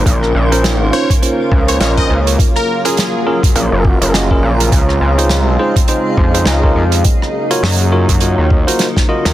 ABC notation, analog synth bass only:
X:1
M:4/4
L:1/16
Q:"Swing 16ths" 1/4=103
K:Bbm
V:1 name="Analog synth bass" clef=bass
B,,,2 B,,,4 z4 D,,2 B,,,2 D,,2 | z8 B,,, G,,,2 G,,,3 B,,,2 | D,,2 D,,4 z4 F,,2 D,,2 F,,2 | z4 G,,3 G,,2 E,,2 z4 E,, |]